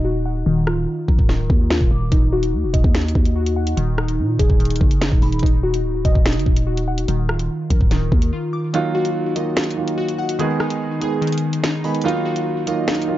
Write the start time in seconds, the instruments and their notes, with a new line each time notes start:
Already playing: 808-style bass D#1, synth keys D#4 D#5
0.05 synth keys F#4
0.26 synth keys F#5
0.46 808-style bass D#1, synth keys D#3
0.67 808-style bass D1, synth keys F4, cross-stick
0.77 808-style bass D#1
1.08 808-style bass A#1, synth keys A#4, kick
1.19 808-style bass D1, kick
1.29 synth keys D#3, snare
1.50 808-style bass D#2, kick
1.70 synth keys F4, snare
1.81 808-style bass D#1, kick
1.91 808-style bass D#1, synth keys D6
2.12 808-style bass D#1, synth keys D#4, kick, closed hi-hat
2.33 synth keys F#4
2.43 closed hi-hat
2.53 808-style bass D#2
2.64 808-style bass D#1
2.74 808-style bass D#1, synth keys D#5, kick, closed hi-hat
2.84 808-style bass D#2, kick
2.94 synth keys D#4, snare, closed hi-hat
3.02 closed hi-hat
3.08 closed hi-hat
3.15 808-style bass D#2, kick
3.25 closed hi-hat
3.36 synth keys F#4
3.46 closed hi-hat
3.56 synth keys F#5
3.67 closed hi-hat
3.77 808-style bass D#1, synth keys D#3, closed hi-hat
3.98 synth keys D#4, cross-stick
4.08 closed hi-hat
4.19 808-style bass A#2
4.39 808-style bass D#1, synth keys G#4, kick, closed hi-hat
4.50 808-style bass D#1, kick
4.59 synth keys D#3, closed hi-hat
4.65 closed hi-hat
4.70 closed hi-hat
4.76 closed hi-hat
4.81 808-style bass F#1, kick
4.91 closed hi-hat
5.01 synth keys D#4, snare, closed hi-hat
5.12 808-style bass D#1, kick
5.22 808-style bass D#1, synth keys B5, open hi-hat
5.32 closed hi-hat
5.39 808-style bass D#1, kick, closed hi-hat
5.43 synth keys D#4, closed hi-hat
5.63 synth keys F#4
5.74 closed hi-hat
5.84 808-style bass D1
6.05 808-style bass D#1, synth keys D#5, kick, closed hi-hat
6.15 808-style bass D#1, kick
6.26 synth keys D#4, snare, closed hi-hat
6.33 808-style bass F#1, closed hi-hat
6.39 closed hi-hat
6.46 808-style bass D#1, kick
6.56 closed hi-hat
6.67 synth keys F#4
6.77 closed hi-hat
6.88 synth keys F#5
6.98 closed hi-hat
7.08 808-style bass D#1, synth keys D#3, closed hi-hat
7.29 808-style bass D1, synth keys F4, cross-stick
7.39 808-style bass D#1, closed hi-hat
7.70 808-style bass A#1, synth keys A#4, kick, closed hi-hat
7.81 808-style bass D1, kick
7.91 synth keys D#3, snare, closed hi-hat
8.12 808-style bass D#2, kick
8.22 closed hi-hat
8.33 synth keys F4
8.53 synth keys D6
8.73 grand piano D#3 F#3 A#3 F4, synth keys D#4, closed hi-hat
8.95 synth keys F#4
9.05 closed hi-hat
9.35 grand piano D#3 F#3 A#3 F4, synth keys D#5, closed hi-hat
9.56 synth keys D#4, snare, closed hi-hat
9.64 closed hi-hat
9.70 closed hi-hat
9.77 grand piano D#3 F#3 A#3 F4
9.88 closed hi-hat
9.98 synth keys F#4
10.08 closed hi-hat
10.18 synth keys F#5
10.29 closed hi-hat
10.39 grand piano D#3 G#3 B3 G#4, synth keys D#3, closed hi-hat
10.60 synth keys D#4, cross-stick
10.70 closed hi-hat
11.01 grand piano D#3 G#3 B3 G#4, synth keys G#4, closed hi-hat
11.21 synth keys D#3, closed hi-hat
11.27 closed hi-hat
11.32 closed hi-hat
11.38 closed hi-hat
11.53 closed hi-hat
11.64 synth keys D#4, snare, closed hi-hat
11.84 grand piano D#3 G#3 B3 G#4, synth keys B5, open hi-hat
11.95 closed hi-hat
12.01 grand piano D#3 F#3 A#3 F4, synth keys D#4, closed hi-hat
12.08 closed hi-hat
12.25 synth keys F#4
12.36 closed hi-hat
12.66 grand piano D#3 F#3 A#3 F4, synth keys D#5, closed hi-hat
12.88 synth keys D#4, snare, closed hi-hat
12.95 closed hi-hat
13.02 closed hi-hat
13.07 grand piano D#3 F#3 A#3 F4